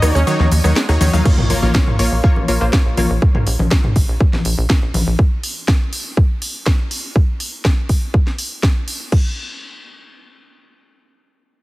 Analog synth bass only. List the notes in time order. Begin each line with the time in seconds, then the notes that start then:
0.02 D#2
0.15 D#2
0.40 D#2
0.52 D#2
0.64 D#2
0.89 D#2
1.01 D#2
1.13 D#2
1.38 A#1
1.50 A#1
1.63 A#1
1.87 A#1
1.99 A#1
2.12 A#1
2.36 A#1
2.48 A#1
2.61 A#1
2.85 A#1
2.97 A#1
3.10 A#1
3.35 A#1
3.47 A#1
3.59 A#1
3.84 A#1
3.96 A#1
4.09 A#1
4.33 A#1
4.45 A#1
4.58 A#1
4.82 A#1
4.94 A#1
5.07 A#1